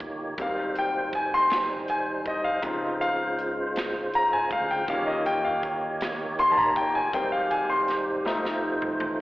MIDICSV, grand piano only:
0, 0, Header, 1, 2, 480
1, 0, Start_track
1, 0, Key_signature, -4, "major"
1, 0, Tempo, 750939
1, 242, Time_signature, 6, 3, 24, 8
1, 5887, End_track
2, 0, Start_track
2, 0, Title_t, "Grand piano"
2, 0, Program_c, 0, 0
2, 0, Control_c, 0, 64, 127
2, 0, Note_on_c, 0, 53, 47
2, 0, Note_on_c, 0, 55, 43
2, 0, Note_on_c, 0, 61, 51
2, 0, Note_on_c, 0, 75, 75
2, 244, Note_off_c, 0, 55, 0
2, 244, Note_on_c, 0, 55, 47
2, 250, Note_on_c, 0, 58, 42
2, 251, Control_c, 0, 64, 0
2, 252, Note_off_c, 0, 53, 0
2, 252, Note_on_c, 0, 60, 53
2, 256, Note_off_c, 0, 61, 0
2, 256, Note_off_c, 0, 75, 0
2, 265, Note_on_c, 0, 77, 73
2, 348, Control_c, 0, 64, 127
2, 501, Note_off_c, 0, 77, 0
2, 502, Note_on_c, 0, 79, 85
2, 563, Note_off_c, 0, 55, 0
2, 566, Note_off_c, 0, 58, 0
2, 567, Note_off_c, 0, 60, 0
2, 736, Note_on_c, 0, 80, 88
2, 739, Note_off_c, 0, 79, 0
2, 853, Note_off_c, 0, 80, 0
2, 857, Note_on_c, 0, 84, 106
2, 1213, Note_on_c, 0, 80, 81
2, 1221, Note_off_c, 0, 84, 0
2, 1266, Note_off_c, 0, 80, 0
2, 1453, Note_on_c, 0, 75, 76
2, 1560, Note_off_c, 0, 75, 0
2, 1562, Note_on_c, 0, 77, 79
2, 1675, Note_on_c, 0, 63, 51
2, 1676, Note_on_c, 0, 53, 45
2, 1683, Note_on_c, 0, 60, 57
2, 1692, Control_c, 0, 64, 0
2, 1800, Control_c, 0, 64, 127
2, 1915, Note_off_c, 0, 77, 0
2, 1924, Note_on_c, 0, 77, 91
2, 2378, Note_off_c, 0, 77, 0
2, 2654, Note_on_c, 0, 82, 96
2, 2761, Note_off_c, 0, 82, 0
2, 2768, Note_on_c, 0, 80, 90
2, 2889, Note_off_c, 0, 80, 0
2, 2891, Note_on_c, 0, 77, 87
2, 2999, Note_off_c, 0, 77, 0
2, 3009, Note_on_c, 0, 79, 81
2, 3094, Note_off_c, 0, 53, 0
2, 3094, Note_off_c, 0, 63, 0
2, 3098, Note_off_c, 0, 60, 0
2, 3125, Note_on_c, 0, 55, 47
2, 3126, Note_on_c, 0, 53, 52
2, 3130, Note_off_c, 0, 79, 0
2, 3130, Control_c, 0, 64, 0
2, 3130, Note_on_c, 0, 77, 86
2, 3131, Note_on_c, 0, 61, 56
2, 3239, Note_off_c, 0, 77, 0
2, 3241, Note_on_c, 0, 75, 73
2, 3247, Control_c, 0, 64, 127
2, 3364, Note_on_c, 0, 79, 85
2, 3366, Note_off_c, 0, 75, 0
2, 3443, Note_off_c, 0, 55, 0
2, 3444, Note_off_c, 0, 53, 0
2, 3447, Note_off_c, 0, 61, 0
2, 3481, Note_on_c, 0, 77, 70
2, 3487, Note_off_c, 0, 79, 0
2, 3705, Note_off_c, 0, 77, 0
2, 4087, Note_on_c, 0, 84, 101
2, 4164, Note_on_c, 0, 81, 69
2, 4178, Note_off_c, 0, 84, 0
2, 4199, Note_off_c, 0, 81, 0
2, 4204, Note_on_c, 0, 82, 88
2, 4326, Note_on_c, 0, 79, 85
2, 4327, Note_off_c, 0, 82, 0
2, 4443, Note_on_c, 0, 80, 88
2, 4448, Note_off_c, 0, 79, 0
2, 4556, Note_on_c, 0, 55, 51
2, 4560, Note_on_c, 0, 58, 49
2, 4563, Note_on_c, 0, 60, 60
2, 4565, Note_on_c, 0, 79, 89
2, 4567, Note_off_c, 0, 80, 0
2, 4571, Control_c, 0, 64, 0
2, 4679, Note_on_c, 0, 77, 75
2, 4688, Note_off_c, 0, 79, 0
2, 4700, Control_c, 0, 64, 127
2, 4799, Note_on_c, 0, 80, 83
2, 4805, Note_off_c, 0, 77, 0
2, 4919, Note_on_c, 0, 84, 80
2, 4924, Note_off_c, 0, 80, 0
2, 5144, Note_off_c, 0, 84, 0
2, 5254, Note_off_c, 0, 55, 0
2, 5256, Note_off_c, 0, 58, 0
2, 5257, Note_off_c, 0, 60, 0
2, 5273, Note_on_c, 0, 55, 53
2, 5277, Note_on_c, 0, 57, 49
2, 5282, Note_on_c, 0, 63, 59
2, 5291, Control_c, 0, 64, 0
2, 5403, Control_c, 0, 64, 127
2, 5597, Note_off_c, 0, 55, 0
2, 5599, Note_off_c, 0, 57, 0
2, 5601, Note_off_c, 0, 63, 0
2, 5887, End_track
0, 0, End_of_file